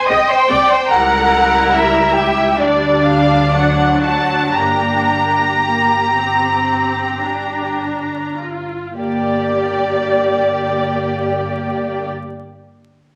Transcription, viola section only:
0.09 0.18 G#3 medium
0.09 0.17 C4 medium
0.50 0.58 G#3 medium
0.50 0.58 C4 medium
0.91 2.56 G3 medium
0.91 2.56 E4 medium
2.58 3.51 G3 medium
2.58 3.51 D4 medium
3.52 4.53 F#3 medium
3.52 4.54 D4 medium
4.56 5.52 A#3 soft
4.56 5.50 D4 medium
5.62 6.11 A#3 medium
6.15 7.23 C4 medium
7.23 8.38 D4 soft
8.38 8.96 F4 soft
8.96 12.07 A#3 soft
8.96 12.07 G4 soft

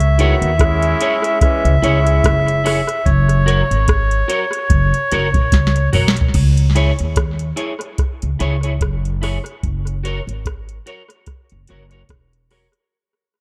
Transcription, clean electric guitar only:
0.19 0.33 E4 medium
0.19 0.34 G#4 loud
0.19 0.34 C#5 loud
1.01 1.16 E4 medium
1.01 1.16 G#4 loud
1.01 1.16 C#5 loud
1.82 1.97 E4 medium
1.82 1.98 G#4 loud
1.82 1.98 C#5 loud
2.47 muted clean electric guitar stroke medium
2.64 2.80 E4 medium
2.64 2.80 G#4 medium
2.64 2.80 C#5 medium
3.46 3.61 F#4 medium
3.46 3.62 A#4 medium
3.46 3.62 C#5 loud
4.28 4.44 F#4 medium
4.28 4.44 A#4 medium
4.28 4.44 C#5 medium
5.12 5.27 F#4 medium
5.12 5.27 A#4 medium
5.12 5.27 C#5 medium
5.75 muted clean electric guitar stroke soft
5.93 6.08 F#4 medium
5.93 6.09 A#4 medium
5.93 6.09 C#5 medium
6.75 6.90 E4 medium
6.75 6.91 G#4 loud
6.75 6.91 C#5 loud
7.56 7.72 E4 medium
7.56 7.72 G#4 medium
7.56 7.73 C#5 medium
7.80 muted clean electric guitar stroke soft
8.39 8.55 E4 medium
8.39 8.55 G#4 loud
8.39 8.56 C#5 loud
8.63 8.73 E4 medium
8.63 8.73 G#4 medium
8.63 8.72 C#5 medium
9.22 9.37 E4 medium
9.22 9.37 G#4 medium
9.22 9.38 C#5 loud
10.04 10.19 F#4 medium
10.04 10.20 A#4 medium
10.04 10.20 C#5 loud
10.86 11.01 F#4 medium
10.86 11.02 A#4 medium
10.86 11.02 C#5 medium
11.09 muted clean electric guitar stroke soft
11.69 11.84 F#4 medium
11.69 11.84 A#4 medium
11.69 11.84 C#5 medium
11.91 12.01 F#4 medium
11.91 12.01 A#4 medium
11.91 12.01 C#5 medium
12.51 12.66 F#4 medium
12.51 12.66 A#4 medium
12.51 12.67 C#5 medium

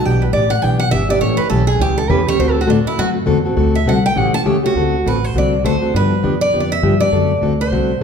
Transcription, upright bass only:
0.04 0.32 B1 medium
0.33 0.61 A1 loud
0.62 0.91 B1 medium
0.92 1.20 G1 medium
1.21 1.37 A1 medium
1.38 muted upright bass stroke soft
1.50 1.78 B1 loud
1.79 2.08 C#2 medium
2.09 2.38 E2 medium
2.39 2.67 D2 medium
2.68 2.84 A2 loud
2.85 muted upright bass stroke soft
2.97 3.26 F#2 medium
3.27 3.56 E2 loud
3.56 3.85 D2 loud
3.85 4.14 C2 loud
4.15 4.31 A1 medium
4.32 muted upright bass stroke soft
4.44 4.73 C#2 medium
4.75 5.04 D2 medium
5.05 5.33 A1 medium
5.34 5.63 C2 medium
5.64 5.93 D2 medium
5.94 6.22 G2 medium
6.23 6.52 E2 medium
6.52 6.81 F2 medium
6.82 7.11 G2 medium
7.12 7.41 F#2 medium
7.41 7.70 D2 medium
7.71 8.00 C2 medium

